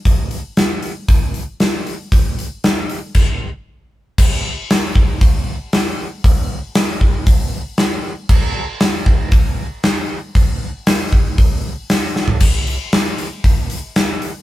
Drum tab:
CC |----------------|--------x-------|x---------------|----------------|
HH |o-o-o-o-o-o-o-o-|o-o-o-o---------|----o---o---o---|o---o---o---o---|
SD |----o-------o---|----o-----------|----o-------o---|----o-------o---|
FT |----------------|----------------|----------------|----------------|
BD |o-------o-------|o-------o-------|o-----o-o-------|o-----o-o-------|

CC |x---------------|----------------|x---------------|
HH |----o---o---o---|o---o---o---o---|--o-o-o-o-o-o-o-|
SD |----o-------o---|----o-------o-o-|----o-------o---|
FT |----------------|---------------o|----------------|
BD |o-----o-o-------|o-----o-o-------|o-------o-------|